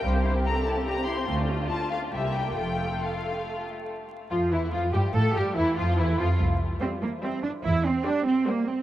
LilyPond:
<<
  \new Staff \with { instrumentName = "Violin section" } { \time 3/4 \key f \major \tempo 4 = 144 r4 bes''8 a''8 bes''8 c'''8 | r4 a''8 f''8 e''8 g''8 | g''4 f''4. r8 | r4 f'8 e'8 f'8 g'8 |
a'8 g'8 e'8 f'8 e'8 f'8 | r4 e''4 e''4 | r4 g''4 g''4 | }
  \new Staff \with { instrumentName = "Cello section" } { \time 3/4 \key f \major c,4 r2 | d,4 r4 c,4 | f,4 r2 | r4 f'8 e'8 f'8 g'8 |
a'8 g'8 e'8 f'8 e'8 f'8 | r4 c'8 bes8 c'8 d'8 | e'8 c'8 d'8 c'8 bes8 c'8 | }
  \new Staff \with { instrumentName = "Violin section" } { \time 3/4 \key f \major << { g'2. | f'2 g'4 | f'2~ f'8 r8 | r4 f'8 e'8 f'8 g'8 |
a'8 g'8 e'8 f'8 e'8 f'8 | r4 c''4 c''4 | r4 c''4 c''4 | } \\ { g16 c'16 e'16 c'16 g16 c'16 e'16 c'16 g16 c'16 e'16 c'16 | a16 d'16 a16 d'16 a16 d'16 a16 d'16 g16 bes16 g16 bes16 | a16 a16 a16 a16 a16 a16 a16 a16 a16 a16 a16 a16 | r2. |
r2. | r2. | r2. | } >> }
  \new Staff \with { instrumentName = "Viola section" } { \clef bass \time 3/4 \key f \major c''4 a'4 g'4~ | g'4 f'4 g'4 | a'2~ a'8 r8 | r4 f8 e8 f8 g8 |
a8 g8 e8 f8 e8 f8 | r4 g4 g4 | r4 g4 g4 | }
  \new Staff \with { instrumentName = "Double bass section" } { \clef bass \time 3/4 \key f \major c,4 r2 | d,4 r4 c,4 | f,,4 r2 | r4 f,8 e,8 f,8 g,8 |
a,8 g,8 e,8 f,8 e,8 f,8 | c,4 r2 | e,4 r2 | }
>>